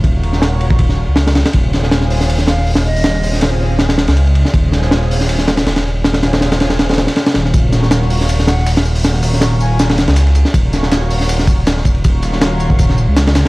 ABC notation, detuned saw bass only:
X:1
M:4/4
L:1/16
Q:"Swing 16ths" 1/4=160
K:Ebm
V:1 name="Detuned saw bass" clef=bass
E,,,8- E,,,3 D,,4 z | E,,,12 E,,,4 | E,,,8- E,,,3 D,,4 z | E,,,12 E,,,4 |
E,,,8- E,,,3 z3 E,,,2 | E,,,12 E,,,4 | E,,,8- E,,,3 D,,4 z | E,,,12 E,,,4 |
E,,,8- E,,,3 D,,4 z |]